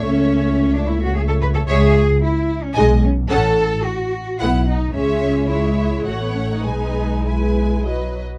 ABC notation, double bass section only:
X:1
M:3/4
L:1/8
Q:1/4=110
K:A
V:1 name="Double bass section" clef=bass
C,,6 | [K:C#m] C,,2 z2 B,,,2 | A,,,2 z2 B,,,2 | C,,4 A,,,2 |
B,,,4- B,,, z |]